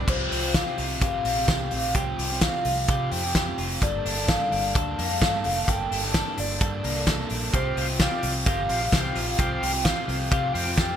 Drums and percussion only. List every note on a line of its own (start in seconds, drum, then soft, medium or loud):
0.08 kick loud
0.08 crash medium
0.32 open hi-hat medium
0.54 kick loud
0.54 snare loud
0.54 closed hi-hat medium
0.78 open hi-hat medium
1.01 kick loud
1.01 closed hi-hat medium
1.25 open hi-hat medium
1.48 kick loud
1.48 snare loud
1.48 closed hi-hat medium
1.71 open hi-hat medium
1.95 kick loud
1.95 closed hi-hat medium
2.19 open hi-hat medium
2.41 kick loud
2.41 snare loud
2.41 closed hi-hat medium
2.65 open hi-hat medium
2.88 kick loud
2.88 closed hi-hat medium
3.12 open hi-hat medium
3.35 kick medium
3.35 snare medium
3.35 closed hi-hat medium
3.58 open hi-hat medium
3.82 kick loud
3.82 closed hi-hat medium
4.06 open hi-hat medium
4.28 kick loud
4.28 snare loud
4.28 closed hi-hat medium
4.52 open hi-hat medium
4.75 kick loud
4.75 closed hi-hat medium
4.99 open hi-hat medium
5.22 kick loud
5.22 snare loud
5.22 closed hi-hat medium
5.44 open hi-hat medium
5.68 kick loud
5.68 closed hi-hat medium
5.92 open hi-hat medium
6.14 kick loud
6.14 snare loud
6.14 closed hi-hat medium
6.38 open hi-hat medium
6.61 kick loud
6.61 closed hi-hat medium
6.84 open hi-hat medium
7.07 kick loud
7.07 snare loud
7.07 closed hi-hat medium
7.30 open hi-hat medium
7.54 kick loud
7.54 closed hi-hat medium
7.77 open hi-hat medium
7.99 kick loud
7.99 snare loud
7.99 closed hi-hat medium
8.23 open hi-hat medium
8.46 kick loud
8.46 closed hi-hat medium
8.69 open hi-hat medium
8.92 kick loud
8.92 snare medium
8.92 closed hi-hat medium
9.16 open hi-hat medium
9.39 kick loud
9.39 closed hi-hat medium
9.63 open hi-hat medium
9.85 kick loud
9.85 snare loud
9.85 closed hi-hat medium
10.09 open hi-hat medium
10.32 kick loud
10.32 closed hi-hat medium
10.55 open hi-hat medium
10.78 kick loud
10.78 snare loud
10.78 closed hi-hat medium